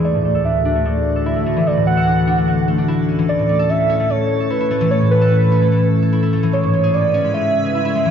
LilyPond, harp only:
\new Staff \with { instrumentName = "Harp" } { \time 4/4 \key a \major \tempo 4 = 148 a16 a,16 a16 a'16 d'16 r16 d'16 a16 a16 r8 a'16 e'16 a16 a16 e16 | a16 a,16 a16 a'16 d'16 r16 d'16 a16 a16 r16 a16 d'16 e'16 r16 cis'16 e16 | a16 a,16 a16 a'16 cis'16 r16 cis'16 a16 a16 r8 a'16 e'16 e'16 a16 e16 | a16 a,16 a16 a'16 cis'16 r16 cis'16 a16 a16 r8 a'16 e'16 e'16 a16 e16 |
gis16 gis,16 gis16 gis'16 cis'16 r16 cis'16 gis16 gis16 r8 gis'16 e'16 e'16 gis16 e16 | }